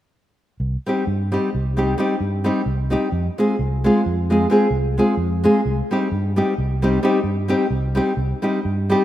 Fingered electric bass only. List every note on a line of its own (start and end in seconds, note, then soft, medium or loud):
0.60 0.75 C2 medium
1.07 1.35 G2 medium
1.55 1.94 C2 medium
2.21 2.48 G2 medium
2.66 2.94 C2 medium
3.12 3.28 F2 medium
3.59 3.87 C2 medium
4.06 4.45 F2 medium
4.71 4.99 C2 medium
5.17 5.46 F2 medium
5.66 5.80 C2 medium
6.12 6.40 G2 medium
6.58 6.97 C2 medium
7.24 7.52 G2 medium
7.71 7.99 C2 medium
8.17 8.32 C2 medium
8.65 8.93 G2 medium